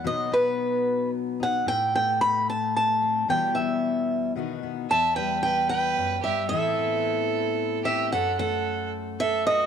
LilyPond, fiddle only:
\new Staff \with { instrumentName = "Fiddle" } { \time 3/4 \key e \minor \tempo 4 = 112 r2. | r2. | r2. | e''8 b'8 b'8 b'4 g'8 |
a'2~ a'8 g'8 | a'8 a'4 r8 a'8 fis'8 | }